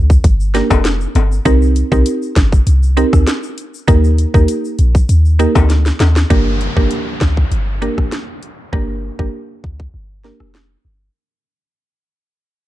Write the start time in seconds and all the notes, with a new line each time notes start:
Already playing: D2
0.10 kick, shaker
0.24 G1, kick, closed hi-hat, shaker
0.40 shaker
0.54 A#3 D4 G4 A#4, snare, closed hi-hat, shaker
0.70 F1, kick, cross-stick, high timbale, shaker
0.85 snare, closed hi-hat, shaker
1.01 shaker
1.15 G1, closed hi-hat, high timbale, shaker
1.32 shaker
1.45 C2 C4 D#4 G4 A#4, kick, closed hi-hat, shaker
1.62 shaker
1.76 closed hi-hat, shaker
1.92 C2 C4 D#4 G4 A#4, kick, shaker
2.06 closed hi-hat, shaker
2.22 shaker
2.36 G1, kick, snare, closed hi-hat, shaker
2.52 kick, shaker
2.67 C2, closed hi-hat, shaker
2.83 shaker
2.97 C4 D#4 G4 A#4, closed hi-hat, shaker
3.13 D2, kick, cross-stick, shaker
3.27 snare, closed hi-hat, shaker
3.43 shaker
3.58 closed hi-hat, shaker
3.74 shaker
3.88 D#2 A#3 D#4 G4 A#4, kick, closed hi-hat, shaker
4.04 shaker
4.18 closed hi-hat, shaker
4.34 D#2 A#3 D#4 G4 A#4, kick, shaker
4.48 closed hi-hat, shaker
4.65 shaker
4.79 A#1, closed hi-hat, shaker
4.95 kick, shaker
5.09 D#2, closed hi-hat, shaker
5.25 shaker
5.39 A#3 D#4 G4 A#4, closed hi-hat, shaker
5.55 D2, kick, cross-stick, high timbale, shaker
5.70 snare, closed hi-hat, shaker
5.86 snare, shaker
6.00 D#2, snare, closed hi-hat, high timbale, shaker
6.16 snare, shaker
6.30 G1 A#3 D4 G4 A#4, kick, closed hi-hat, downlifter
6.61 closed hi-hat
6.76 G1 A#3 D4 G4 A#4, kick
6.91 closed hi-hat
7.21 D2, kick, snare, closed hi-hat
7.37 kick
7.52 G1, closed hi-hat
7.82 A#3 D4 G4 A#4, closed hi-hat
7.98 A1, kick, cross-stick
8.12 snare, closed hi-hat
8.43 closed hi-hat
8.73 G1 A#3 D4 G4 A#4, kick
9.19 G1 A#3 D4 G4 A#4, kick
9.64 D2, kick
9.80 kick
9.94 G1
10.24 A#3 D4 G4 A#4, snare
10.40 F1, cross-stick
10.55 snare
10.85 G1